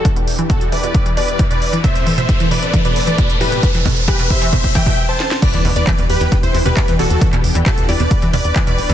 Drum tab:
CC |----------------|----------------|----------------|x---------------|
HH |xxoxxxoxxxoxxxox|xxoxxxoxxxoxxxox|xxoxxxoxxxox----|xxoxxxoxxxoxxxox|
CP |----------------|----------------|----------------|----x-------x---|
SD |----------------|----------------|--------------oo|----------------|
BD |o---o---o---o---|o---o---o---o---|o-o-o-o-oooo----|o---o---o---o---|

CC |----------------|
HH |xxoxxxoxxxoxxxox|
CP |-x--x-------x---|
SD |----------------|
BD |o---o---o---o---|